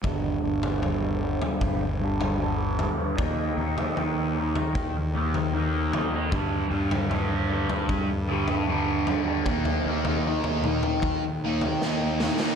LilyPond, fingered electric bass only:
\new Staff \with { instrumentName = "Fingered electric bass" } { \clef bass \time 4/4 \key g \minor \tempo 4 = 76 g,,8 g,,4. g,,2 | ees,8 ees,4. ees,2 | g,8 g,4. g,2 | ees,8 ees,4. ees,2 | }